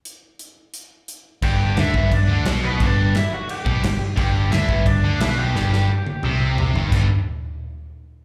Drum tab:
CC |--------|x-x-x-x-|x-x-x-x-|x-x-x-x-|
HH |x-x-x-x-|--------|--------|--------|
SD |--------|--o---o-|--o---o-|--o---o-|
T1 |--------|--------|--------|--------|
T2 |--------|--------|--------|--------|
FT |--------|--------|--------|--------|
BD |--------|o--oo---|o----o--|o--oo---|

CC |--------|x-------|
HH |--------|--------|
SD |oo------|--------|
T1 |---o----|--------|
T2 |----o---|--------|
FT |------oo|--------|
BD |--------|o-------|